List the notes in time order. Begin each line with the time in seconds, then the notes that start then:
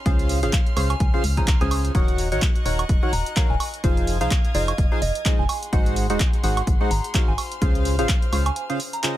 Already playing: C#4 C6 F6
0.06 C#2 C#3 C#4 F4 G#4 C5 F5, kick, closed hi-hat
0.19 closed hi-hat
0.29 open hi-hat
0.43 G#1 C#3 C#4 F4 G#4 C5 F5, closed hi-hat
0.53 kick, clap, closed hi-hat
0.67 closed hi-hat
0.77 C#2 C#3 C#4 F4 G#4 C5 F5, open hi-hat, high woodblock
0.90 G#5, closed hi-hat, high woodblock
1.00 C#2 G#5, kick, closed hi-hat
1.14 C#3 C#4 F4 G#4 C5 F5
1.24 C#2, open hi-hat
1.37 C#3 C#4 F4 G#4 C5 G#5 A#5, kick, closed hi-hat
1.47 kick, clap, closed hi-hat
1.61 C#2 C#3 C#4 F4 G#4 C5 G#5 D#6, closed hi-hat
1.71 D#6, open hi-hat, high woodblock
1.85 closed hi-hat
1.95 D#1 D#3 D#4 F#4 A#4 C#5 D#5 F#5 C#6 F#6, kick, closed hi-hat
2.08 closed hi-hat
2.18 open hi-hat
2.32 A#1 D#3 D#4 F#4 A#4 C#5 F#5, closed hi-hat
2.42 kick, clap, closed hi-hat
2.56 closed hi-hat
2.66 D#1 D#3 D#4 F#4 A#4 C#5 F#5, open hi-hat
2.79 closed hi-hat, high woodblock
2.89 D#1, kick, closed hi-hat
3.03 D#3 D#4 F#4 A#4 C#5 F#5
3.13 D#1 A#5, open hi-hat
3.26 closed hi-hat
3.36 D#3 D#4 F#4 A#4 C#5 F5, kick, clap, closed hi-hat
3.50 D#1 G#5
3.60 open hi-hat, high woodblock
3.74 closed hi-hat
3.84 F1 F3 D#4 F4 G#4 C5 F5 D#6 G#6, kick, closed hi-hat
3.97 closed hi-hat
4.07 open hi-hat
4.21 C2 F3 D#4 F4 G#4 C5 F5, closed hi-hat
4.31 kick, clap, closed hi-hat
4.45 closed hi-hat
4.55 F1 F3 D#4 F4 G#4 C5 D#5 F5, open hi-hat
4.68 closed hi-hat, high woodblock
4.78 F1, kick, closed hi-hat
4.92 F3 D#4 F4 G#4 C5 F5
5.02 F1 D#5, open hi-hat
5.15 closed hi-hat
5.25 G#3 D#4 F4 G#4 C5 D#5, kick, clap, closed hi-hat
5.39 F1 G#5
5.49 G#4 F#5 G#5 C6, open hi-hat, high woodblock
5.63 closed hi-hat
5.73 G#1 G#3 D#4 F#4 G#4 C5 F#5, kick, closed hi-hat
5.86 closed hi-hat
5.96 open hi-hat
6.10 D#1 G#3 D#4 F#4 G#4 C5 F#5, closed hi-hat
6.20 kick, clap, closed hi-hat
6.33 closed hi-hat
6.43 G#1 G#3 D#4 F#4 G#4 C5 F#5, open hi-hat
6.57 closed hi-hat, high woodblock
6.67 G#1, kick, closed hi-hat
6.81 G#3 D#4 F#4 G#4 C5 F#5
6.91 G#1 A#5, open hi-hat
7.04 closed hi-hat
7.14 D#4 F#4 G#4 C5 F5, kick, clap, closed hi-hat
7.28 G#1 G#5
7.38 C5 F6, open hi-hat, high woodblock
7.52 closed hi-hat
7.62 C#2 C#3 C#4 F4 G#4 C5 F5, kick, closed hi-hat
7.75 closed hi-hat
7.85 open hi-hat
7.99 G#1 C#3 C#4 F4 G#4 C5 F5, closed hi-hat
8.09 kick, clap, closed hi-hat
8.22 closed hi-hat
8.32 C#2 C#3 C#4 F4 G#4 C5 F5, open hi-hat, high woodblock
8.46 G#5, closed hi-hat, high woodblock
8.56 G#5, closed hi-hat
8.70 C#3 C#4 F4 G#4 C5 F5, closed hi-hat
8.80 open hi-hat
8.93 A#5, closed hi-hat
9.03 C#3 C#4 F4 G#4 C5 D#5, clap, closed hi-hat